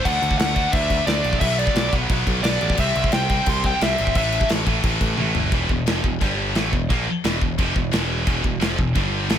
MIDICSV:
0, 0, Header, 1, 7, 480
1, 0, Start_track
1, 0, Key_signature, 1, "minor"
1, 0, Tempo, 342270
1, 80, Time_signature, 4, 2, 24, 8
1, 13162, End_track
2, 0, Start_track
2, 0, Title_t, "Lead electric guitar"
2, 0, Program_c, 0, 29
2, 71, Note_on_c, 0, 78, 98
2, 518, Note_off_c, 0, 78, 0
2, 534, Note_on_c, 0, 78, 94
2, 1015, Note_on_c, 0, 76, 95
2, 1039, Note_off_c, 0, 78, 0
2, 1470, Note_off_c, 0, 76, 0
2, 1495, Note_on_c, 0, 74, 87
2, 1958, Note_off_c, 0, 74, 0
2, 1964, Note_on_c, 0, 76, 90
2, 2222, Note_off_c, 0, 76, 0
2, 2222, Note_on_c, 0, 74, 84
2, 2706, Note_off_c, 0, 74, 0
2, 3409, Note_on_c, 0, 74, 86
2, 3865, Note_off_c, 0, 74, 0
2, 3927, Note_on_c, 0, 76, 105
2, 4365, Note_off_c, 0, 76, 0
2, 4398, Note_on_c, 0, 79, 104
2, 4888, Note_off_c, 0, 79, 0
2, 4895, Note_on_c, 0, 84, 109
2, 5129, Note_off_c, 0, 84, 0
2, 5132, Note_on_c, 0, 79, 101
2, 5365, Note_off_c, 0, 79, 0
2, 5365, Note_on_c, 0, 76, 97
2, 5825, Note_off_c, 0, 76, 0
2, 5842, Note_on_c, 0, 76, 90
2, 6283, Note_off_c, 0, 76, 0
2, 13162, End_track
3, 0, Start_track
3, 0, Title_t, "Distorted electric guitar"
3, 0, Program_c, 1, 30
3, 65, Note_on_c, 1, 50, 86
3, 93, Note_on_c, 1, 57, 100
3, 108, Note_on_c, 1, 62, 96
3, 773, Note_off_c, 1, 62, 0
3, 776, Note_off_c, 1, 50, 0
3, 779, Note_on_c, 1, 62, 86
3, 782, Note_off_c, 1, 57, 0
3, 799, Note_on_c, 1, 57, 72
3, 817, Note_on_c, 1, 50, 72
3, 1476, Note_off_c, 1, 50, 0
3, 1492, Note_off_c, 1, 62, 0
3, 1493, Note_on_c, 1, 50, 84
3, 1495, Note_off_c, 1, 57, 0
3, 1512, Note_on_c, 1, 57, 80
3, 1532, Note_on_c, 1, 62, 85
3, 1963, Note_off_c, 1, 50, 0
3, 1968, Note_on_c, 1, 47, 92
3, 1978, Note_off_c, 1, 57, 0
3, 1988, Note_off_c, 1, 62, 0
3, 1994, Note_on_c, 1, 54, 109
3, 2014, Note_on_c, 1, 59, 81
3, 2671, Note_off_c, 1, 59, 0
3, 2685, Note_off_c, 1, 47, 0
3, 2688, Note_on_c, 1, 59, 72
3, 2698, Note_off_c, 1, 54, 0
3, 2713, Note_on_c, 1, 54, 73
3, 2731, Note_on_c, 1, 47, 59
3, 3403, Note_off_c, 1, 47, 0
3, 3405, Note_off_c, 1, 59, 0
3, 3417, Note_off_c, 1, 54, 0
3, 3420, Note_on_c, 1, 47, 88
3, 3439, Note_on_c, 1, 54, 85
3, 3461, Note_on_c, 1, 59, 87
3, 3891, Note_off_c, 1, 47, 0
3, 3900, Note_off_c, 1, 54, 0
3, 3908, Note_on_c, 1, 48, 87
3, 3911, Note_off_c, 1, 59, 0
3, 3929, Note_on_c, 1, 55, 86
3, 3944, Note_on_c, 1, 60, 106
3, 4614, Note_off_c, 1, 48, 0
3, 4615, Note_off_c, 1, 60, 0
3, 4621, Note_on_c, 1, 60, 91
3, 4625, Note_off_c, 1, 55, 0
3, 4646, Note_on_c, 1, 55, 66
3, 4662, Note_on_c, 1, 48, 65
3, 5324, Note_off_c, 1, 48, 0
3, 5331, Note_off_c, 1, 60, 0
3, 5341, Note_on_c, 1, 48, 78
3, 5344, Note_off_c, 1, 55, 0
3, 5361, Note_on_c, 1, 55, 84
3, 5383, Note_on_c, 1, 60, 98
3, 5810, Note_off_c, 1, 48, 0
3, 5816, Note_on_c, 1, 45, 88
3, 5821, Note_off_c, 1, 55, 0
3, 5832, Note_off_c, 1, 60, 0
3, 5840, Note_on_c, 1, 52, 96
3, 5859, Note_on_c, 1, 57, 83
3, 6519, Note_off_c, 1, 57, 0
3, 6529, Note_off_c, 1, 45, 0
3, 6535, Note_on_c, 1, 57, 76
3, 6541, Note_off_c, 1, 52, 0
3, 6557, Note_on_c, 1, 52, 65
3, 6573, Note_on_c, 1, 45, 64
3, 7234, Note_off_c, 1, 45, 0
3, 7249, Note_off_c, 1, 57, 0
3, 7251, Note_on_c, 1, 45, 82
3, 7260, Note_off_c, 1, 52, 0
3, 7277, Note_on_c, 1, 52, 86
3, 7294, Note_on_c, 1, 57, 82
3, 7727, Note_off_c, 1, 45, 0
3, 7740, Note_off_c, 1, 52, 0
3, 7743, Note_on_c, 1, 40, 86
3, 7749, Note_off_c, 1, 57, 0
3, 7751, Note_on_c, 1, 47, 94
3, 7757, Note_on_c, 1, 52, 108
3, 7976, Note_off_c, 1, 40, 0
3, 7981, Note_off_c, 1, 47, 0
3, 7987, Note_off_c, 1, 52, 0
3, 7993, Note_on_c, 1, 40, 72
3, 7998, Note_on_c, 1, 47, 86
3, 8185, Note_off_c, 1, 40, 0
3, 8187, Note_off_c, 1, 47, 0
3, 8221, Note_on_c, 1, 41, 85
3, 8227, Note_on_c, 1, 48, 92
3, 8238, Note_on_c, 1, 53, 95
3, 8460, Note_off_c, 1, 41, 0
3, 8463, Note_off_c, 1, 48, 0
3, 8468, Note_off_c, 1, 53, 0
3, 8479, Note_on_c, 1, 40, 59
3, 8484, Note_on_c, 1, 47, 66
3, 8668, Note_off_c, 1, 40, 0
3, 8670, Note_off_c, 1, 47, 0
3, 8703, Note_on_c, 1, 43, 85
3, 8719, Note_on_c, 1, 50, 94
3, 8720, Note_on_c, 1, 55, 106
3, 9180, Note_off_c, 1, 50, 0
3, 9182, Note_off_c, 1, 43, 0
3, 9185, Note_on_c, 1, 45, 106
3, 9189, Note_off_c, 1, 55, 0
3, 9195, Note_on_c, 1, 52, 88
3, 9207, Note_on_c, 1, 57, 100
3, 9423, Note_off_c, 1, 45, 0
3, 9428, Note_off_c, 1, 52, 0
3, 9433, Note_off_c, 1, 57, 0
3, 9444, Note_on_c, 1, 40, 63
3, 9444, Note_on_c, 1, 47, 59
3, 9631, Note_off_c, 1, 47, 0
3, 9632, Note_off_c, 1, 40, 0
3, 9674, Note_on_c, 1, 46, 89
3, 9681, Note_on_c, 1, 53, 106
3, 9683, Note_on_c, 1, 58, 107
3, 9907, Note_off_c, 1, 46, 0
3, 9911, Note_off_c, 1, 53, 0
3, 9912, Note_off_c, 1, 58, 0
3, 10157, Note_on_c, 1, 40, 101
3, 10163, Note_on_c, 1, 47, 109
3, 10170, Note_on_c, 1, 52, 90
3, 10377, Note_off_c, 1, 40, 0
3, 10385, Note_off_c, 1, 47, 0
3, 10394, Note_on_c, 1, 40, 68
3, 10396, Note_off_c, 1, 52, 0
3, 10402, Note_on_c, 1, 47, 71
3, 10587, Note_off_c, 1, 40, 0
3, 10591, Note_off_c, 1, 47, 0
3, 10630, Note_on_c, 1, 41, 77
3, 10636, Note_on_c, 1, 48, 98
3, 10645, Note_on_c, 1, 53, 100
3, 10862, Note_off_c, 1, 41, 0
3, 10866, Note_off_c, 1, 48, 0
3, 10868, Note_on_c, 1, 40, 68
3, 10872, Note_on_c, 1, 47, 80
3, 10874, Note_off_c, 1, 53, 0
3, 11065, Note_off_c, 1, 40, 0
3, 11066, Note_off_c, 1, 47, 0
3, 11101, Note_on_c, 1, 40, 89
3, 11114, Note_on_c, 1, 47, 94
3, 11118, Note_on_c, 1, 52, 107
3, 11569, Note_off_c, 1, 40, 0
3, 11578, Note_off_c, 1, 47, 0
3, 11579, Note_off_c, 1, 52, 0
3, 11586, Note_on_c, 1, 40, 94
3, 11595, Note_on_c, 1, 47, 96
3, 11596, Note_on_c, 1, 52, 96
3, 11815, Note_off_c, 1, 40, 0
3, 11817, Note_off_c, 1, 47, 0
3, 11830, Note_off_c, 1, 52, 0
3, 11832, Note_on_c, 1, 40, 81
3, 11833, Note_on_c, 1, 47, 80
3, 12027, Note_off_c, 1, 40, 0
3, 12028, Note_off_c, 1, 47, 0
3, 12060, Note_on_c, 1, 41, 99
3, 12072, Note_on_c, 1, 48, 99
3, 12080, Note_on_c, 1, 53, 95
3, 12302, Note_off_c, 1, 41, 0
3, 12304, Note_off_c, 1, 48, 0
3, 12307, Note_on_c, 1, 40, 67
3, 12309, Note_on_c, 1, 47, 63
3, 12312, Note_off_c, 1, 53, 0
3, 12505, Note_off_c, 1, 40, 0
3, 12506, Note_off_c, 1, 47, 0
3, 12553, Note_on_c, 1, 43, 95
3, 12565, Note_on_c, 1, 50, 101
3, 12569, Note_on_c, 1, 55, 96
3, 13030, Note_off_c, 1, 43, 0
3, 13034, Note_off_c, 1, 50, 0
3, 13038, Note_off_c, 1, 55, 0
3, 13040, Note_on_c, 1, 45, 108
3, 13045, Note_on_c, 1, 52, 98
3, 13055, Note_on_c, 1, 57, 105
3, 13162, Note_off_c, 1, 45, 0
3, 13162, Note_off_c, 1, 52, 0
3, 13162, Note_off_c, 1, 57, 0
3, 13162, End_track
4, 0, Start_track
4, 0, Title_t, "Picked electric bass"
4, 0, Program_c, 2, 34
4, 70, Note_on_c, 2, 38, 89
4, 254, Note_off_c, 2, 38, 0
4, 310, Note_on_c, 2, 38, 93
4, 494, Note_off_c, 2, 38, 0
4, 554, Note_on_c, 2, 38, 93
4, 917, Note_off_c, 2, 38, 0
4, 1028, Note_on_c, 2, 38, 96
4, 1393, Note_off_c, 2, 38, 0
4, 1499, Note_on_c, 2, 38, 97
4, 1686, Note_off_c, 2, 38, 0
4, 1748, Note_on_c, 2, 34, 91
4, 1931, Note_off_c, 2, 34, 0
4, 1973, Note_on_c, 2, 35, 93
4, 2343, Note_off_c, 2, 35, 0
4, 2449, Note_on_c, 2, 35, 92
4, 2639, Note_off_c, 2, 35, 0
4, 2700, Note_on_c, 2, 35, 93
4, 2886, Note_off_c, 2, 35, 0
4, 2939, Note_on_c, 2, 35, 83
4, 3125, Note_off_c, 2, 35, 0
4, 3183, Note_on_c, 2, 35, 94
4, 3367, Note_off_c, 2, 35, 0
4, 3415, Note_on_c, 2, 35, 105
4, 3602, Note_off_c, 2, 35, 0
4, 3660, Note_on_c, 2, 33, 95
4, 3845, Note_off_c, 2, 33, 0
4, 3903, Note_on_c, 2, 36, 96
4, 4087, Note_off_c, 2, 36, 0
4, 4144, Note_on_c, 2, 36, 96
4, 4327, Note_off_c, 2, 36, 0
4, 4391, Note_on_c, 2, 36, 91
4, 4753, Note_off_c, 2, 36, 0
4, 4858, Note_on_c, 2, 36, 94
4, 5225, Note_off_c, 2, 36, 0
4, 5351, Note_on_c, 2, 36, 93
4, 5532, Note_off_c, 2, 36, 0
4, 5601, Note_on_c, 2, 32, 93
4, 5828, Note_off_c, 2, 32, 0
4, 5828, Note_on_c, 2, 33, 93
4, 6191, Note_off_c, 2, 33, 0
4, 6318, Note_on_c, 2, 33, 99
4, 6496, Note_off_c, 2, 33, 0
4, 6542, Note_on_c, 2, 33, 103
4, 6726, Note_off_c, 2, 33, 0
4, 6782, Note_on_c, 2, 33, 89
4, 6966, Note_off_c, 2, 33, 0
4, 7022, Note_on_c, 2, 33, 84
4, 7207, Note_off_c, 2, 33, 0
4, 7272, Note_on_c, 2, 33, 94
4, 7453, Note_off_c, 2, 33, 0
4, 7515, Note_on_c, 2, 31, 82
4, 7695, Note_off_c, 2, 31, 0
4, 7747, Note_on_c, 2, 28, 82
4, 7972, Note_off_c, 2, 28, 0
4, 7985, Note_on_c, 2, 28, 85
4, 8212, Note_off_c, 2, 28, 0
4, 8241, Note_on_c, 2, 29, 94
4, 8460, Note_off_c, 2, 29, 0
4, 8469, Note_on_c, 2, 28, 86
4, 8694, Note_off_c, 2, 28, 0
4, 8706, Note_on_c, 2, 31, 94
4, 9156, Note_off_c, 2, 31, 0
4, 9191, Note_on_c, 2, 33, 90
4, 9416, Note_off_c, 2, 33, 0
4, 9432, Note_on_c, 2, 28, 87
4, 9656, Note_off_c, 2, 28, 0
4, 9678, Note_on_c, 2, 34, 85
4, 9900, Note_off_c, 2, 34, 0
4, 10163, Note_on_c, 2, 28, 105
4, 10383, Note_off_c, 2, 28, 0
4, 10400, Note_on_c, 2, 28, 89
4, 10622, Note_off_c, 2, 28, 0
4, 10637, Note_on_c, 2, 29, 82
4, 10860, Note_off_c, 2, 29, 0
4, 10879, Note_on_c, 2, 28, 78
4, 11102, Note_off_c, 2, 28, 0
4, 11125, Note_on_c, 2, 28, 104
4, 11569, Note_off_c, 2, 28, 0
4, 11595, Note_on_c, 2, 28, 92
4, 11820, Note_off_c, 2, 28, 0
4, 11840, Note_on_c, 2, 28, 80
4, 12063, Note_off_c, 2, 28, 0
4, 12074, Note_on_c, 2, 29, 95
4, 12300, Note_off_c, 2, 29, 0
4, 12320, Note_on_c, 2, 28, 90
4, 12543, Note_off_c, 2, 28, 0
4, 12563, Note_on_c, 2, 31, 85
4, 13008, Note_off_c, 2, 31, 0
4, 13048, Note_on_c, 2, 33, 99
4, 13162, Note_off_c, 2, 33, 0
4, 13162, End_track
5, 0, Start_track
5, 0, Title_t, "Muted distorted electric guitar strokes"
5, 9913, Note_on_c, 9, 29, 62
5, 10053, Note_off_c, 9, 29, 0
5, 13162, End_track
6, 0, Start_track
6, 0, Title_t, "Muted picked electric bass strokes"
6, 9917, Note_on_c, 9, 29, 45
6, 10057, Note_off_c, 9, 29, 0
6, 13162, End_track
7, 0, Start_track
7, 0, Title_t, "Drums"
7, 74, Note_on_c, 9, 36, 115
7, 79, Note_on_c, 9, 49, 99
7, 214, Note_off_c, 9, 36, 0
7, 219, Note_off_c, 9, 49, 0
7, 317, Note_on_c, 9, 49, 59
7, 431, Note_on_c, 9, 36, 87
7, 457, Note_off_c, 9, 49, 0
7, 553, Note_on_c, 9, 49, 87
7, 569, Note_on_c, 9, 38, 115
7, 571, Note_off_c, 9, 36, 0
7, 693, Note_off_c, 9, 49, 0
7, 709, Note_off_c, 9, 38, 0
7, 781, Note_on_c, 9, 49, 65
7, 786, Note_on_c, 9, 36, 77
7, 921, Note_off_c, 9, 49, 0
7, 926, Note_off_c, 9, 36, 0
7, 1021, Note_on_c, 9, 49, 93
7, 1025, Note_on_c, 9, 36, 127
7, 1162, Note_off_c, 9, 49, 0
7, 1165, Note_off_c, 9, 36, 0
7, 1261, Note_on_c, 9, 49, 66
7, 1264, Note_on_c, 9, 36, 82
7, 1402, Note_off_c, 9, 49, 0
7, 1404, Note_off_c, 9, 36, 0
7, 1502, Note_on_c, 9, 49, 73
7, 1517, Note_on_c, 9, 38, 99
7, 1642, Note_off_c, 9, 49, 0
7, 1658, Note_off_c, 9, 38, 0
7, 1742, Note_on_c, 9, 49, 57
7, 1862, Note_on_c, 9, 36, 88
7, 1882, Note_off_c, 9, 49, 0
7, 1980, Note_off_c, 9, 36, 0
7, 1980, Note_on_c, 9, 36, 117
7, 1983, Note_on_c, 9, 49, 101
7, 2120, Note_off_c, 9, 36, 0
7, 2123, Note_off_c, 9, 49, 0
7, 2230, Note_on_c, 9, 49, 63
7, 2341, Note_on_c, 9, 36, 95
7, 2370, Note_off_c, 9, 49, 0
7, 2462, Note_on_c, 9, 49, 81
7, 2478, Note_on_c, 9, 38, 115
7, 2482, Note_off_c, 9, 36, 0
7, 2602, Note_off_c, 9, 49, 0
7, 2618, Note_off_c, 9, 38, 0
7, 2702, Note_on_c, 9, 36, 85
7, 2705, Note_on_c, 9, 49, 64
7, 2843, Note_off_c, 9, 36, 0
7, 2845, Note_off_c, 9, 49, 0
7, 2938, Note_on_c, 9, 49, 78
7, 2941, Note_on_c, 9, 36, 113
7, 3078, Note_off_c, 9, 49, 0
7, 3081, Note_off_c, 9, 36, 0
7, 3180, Note_on_c, 9, 36, 89
7, 3182, Note_on_c, 9, 49, 66
7, 3321, Note_off_c, 9, 36, 0
7, 3322, Note_off_c, 9, 49, 0
7, 3419, Note_on_c, 9, 49, 88
7, 3434, Note_on_c, 9, 38, 105
7, 3559, Note_off_c, 9, 49, 0
7, 3575, Note_off_c, 9, 38, 0
7, 3658, Note_on_c, 9, 49, 58
7, 3782, Note_on_c, 9, 36, 94
7, 3798, Note_off_c, 9, 49, 0
7, 3891, Note_on_c, 9, 49, 99
7, 3902, Note_off_c, 9, 36, 0
7, 3902, Note_on_c, 9, 36, 115
7, 4031, Note_off_c, 9, 49, 0
7, 4043, Note_off_c, 9, 36, 0
7, 4142, Note_on_c, 9, 49, 64
7, 4263, Note_on_c, 9, 36, 98
7, 4282, Note_off_c, 9, 49, 0
7, 4372, Note_on_c, 9, 49, 81
7, 4388, Note_on_c, 9, 38, 103
7, 4403, Note_off_c, 9, 36, 0
7, 4512, Note_off_c, 9, 49, 0
7, 4528, Note_off_c, 9, 38, 0
7, 4620, Note_on_c, 9, 49, 71
7, 4625, Note_on_c, 9, 36, 94
7, 4760, Note_off_c, 9, 49, 0
7, 4765, Note_off_c, 9, 36, 0
7, 4854, Note_on_c, 9, 49, 91
7, 4865, Note_on_c, 9, 36, 106
7, 4994, Note_off_c, 9, 49, 0
7, 5005, Note_off_c, 9, 36, 0
7, 5099, Note_on_c, 9, 49, 66
7, 5105, Note_on_c, 9, 36, 88
7, 5239, Note_off_c, 9, 49, 0
7, 5245, Note_off_c, 9, 36, 0
7, 5347, Note_on_c, 9, 49, 85
7, 5362, Note_on_c, 9, 38, 105
7, 5487, Note_off_c, 9, 49, 0
7, 5503, Note_off_c, 9, 38, 0
7, 5582, Note_on_c, 9, 49, 57
7, 5706, Note_on_c, 9, 36, 88
7, 5723, Note_off_c, 9, 49, 0
7, 5822, Note_on_c, 9, 49, 93
7, 5827, Note_off_c, 9, 36, 0
7, 5827, Note_on_c, 9, 36, 116
7, 5962, Note_off_c, 9, 49, 0
7, 5968, Note_off_c, 9, 36, 0
7, 6064, Note_on_c, 9, 49, 61
7, 6184, Note_on_c, 9, 36, 97
7, 6204, Note_off_c, 9, 49, 0
7, 6302, Note_on_c, 9, 49, 87
7, 6317, Note_on_c, 9, 38, 104
7, 6324, Note_off_c, 9, 36, 0
7, 6442, Note_off_c, 9, 49, 0
7, 6457, Note_off_c, 9, 38, 0
7, 6542, Note_on_c, 9, 49, 60
7, 6544, Note_on_c, 9, 36, 86
7, 6682, Note_off_c, 9, 49, 0
7, 6684, Note_off_c, 9, 36, 0
7, 6780, Note_on_c, 9, 49, 84
7, 6784, Note_on_c, 9, 36, 125
7, 6921, Note_off_c, 9, 49, 0
7, 6924, Note_off_c, 9, 36, 0
7, 7023, Note_on_c, 9, 49, 61
7, 7024, Note_on_c, 9, 36, 87
7, 7163, Note_off_c, 9, 49, 0
7, 7164, Note_off_c, 9, 36, 0
7, 7258, Note_on_c, 9, 48, 59
7, 7398, Note_off_c, 9, 48, 0
7, 7501, Note_on_c, 9, 43, 96
7, 7641, Note_off_c, 9, 43, 0
7, 7739, Note_on_c, 9, 52, 75
7, 7742, Note_on_c, 9, 36, 121
7, 7879, Note_off_c, 9, 52, 0
7, 7882, Note_off_c, 9, 36, 0
7, 7984, Note_on_c, 9, 36, 90
7, 8124, Note_off_c, 9, 36, 0
7, 8227, Note_on_c, 9, 52, 62
7, 8242, Note_on_c, 9, 38, 119
7, 8367, Note_off_c, 9, 52, 0
7, 8382, Note_off_c, 9, 38, 0
7, 8469, Note_on_c, 9, 36, 90
7, 8609, Note_off_c, 9, 36, 0
7, 8714, Note_on_c, 9, 36, 105
7, 8717, Note_on_c, 9, 52, 69
7, 8854, Note_off_c, 9, 36, 0
7, 8857, Note_off_c, 9, 52, 0
7, 9187, Note_on_c, 9, 52, 60
7, 9202, Note_on_c, 9, 38, 97
7, 9327, Note_off_c, 9, 52, 0
7, 9342, Note_off_c, 9, 38, 0
7, 9436, Note_on_c, 9, 36, 91
7, 9576, Note_off_c, 9, 36, 0
7, 9681, Note_on_c, 9, 36, 113
7, 9683, Note_on_c, 9, 52, 67
7, 9821, Note_off_c, 9, 36, 0
7, 9823, Note_off_c, 9, 52, 0
7, 10157, Note_on_c, 9, 52, 62
7, 10173, Note_on_c, 9, 38, 102
7, 10297, Note_off_c, 9, 52, 0
7, 10313, Note_off_c, 9, 38, 0
7, 10399, Note_on_c, 9, 36, 92
7, 10539, Note_off_c, 9, 36, 0
7, 10638, Note_on_c, 9, 52, 65
7, 10639, Note_on_c, 9, 36, 122
7, 10778, Note_off_c, 9, 52, 0
7, 10779, Note_off_c, 9, 36, 0
7, 10880, Note_on_c, 9, 36, 86
7, 11020, Note_off_c, 9, 36, 0
7, 11116, Note_on_c, 9, 52, 61
7, 11131, Note_on_c, 9, 38, 116
7, 11256, Note_off_c, 9, 52, 0
7, 11271, Note_off_c, 9, 38, 0
7, 11594, Note_on_c, 9, 52, 71
7, 11598, Note_on_c, 9, 36, 111
7, 11734, Note_off_c, 9, 52, 0
7, 11738, Note_off_c, 9, 36, 0
7, 11839, Note_on_c, 9, 36, 87
7, 11980, Note_off_c, 9, 36, 0
7, 12078, Note_on_c, 9, 52, 59
7, 12094, Note_on_c, 9, 38, 102
7, 12219, Note_off_c, 9, 52, 0
7, 12234, Note_off_c, 9, 38, 0
7, 12321, Note_on_c, 9, 36, 84
7, 12461, Note_off_c, 9, 36, 0
7, 12558, Note_on_c, 9, 52, 60
7, 12560, Note_on_c, 9, 36, 109
7, 12698, Note_off_c, 9, 52, 0
7, 12700, Note_off_c, 9, 36, 0
7, 13034, Note_on_c, 9, 52, 68
7, 13050, Note_on_c, 9, 38, 106
7, 13162, Note_off_c, 9, 38, 0
7, 13162, Note_off_c, 9, 52, 0
7, 13162, End_track
0, 0, End_of_file